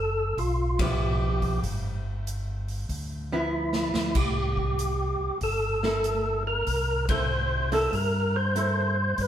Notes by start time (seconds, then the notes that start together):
Already playing: F#1 A4
0.37 B1 F4, kick, open hi-hat
0.79 F3 B3 E4 G4, kick, ride
1.42 kick, open hi-hat
1.63 G1, kick, open hi-hat
2.27 closed hi-hat
2.68 open hi-hat
2.89 D2, kick, open hi-hat
3.32 F3 B3 E4
3.73 snare
3.94 D2, snare
4.15 C2 G4, kick, crash
4.57 kick
4.79 closed hi-hat
5.20 C2
5.41 G1 A4, kick, open hi-hat
5.83 A#3 E4 A4, snare
6.04 closed hi-hat
6.47 A#4
6.67 C2, kick, open hi-hat
7.09 A#3 E4 A4 C5, kick, ride
7.72 A#3 E4 A4, open hi-hat
7.91 G2 A4 A#4, kick, open hi-hat
8.36 C5
8.55 A#3 E4 A4, closed hi-hat
9.18 G2 B4, kick, open hi-hat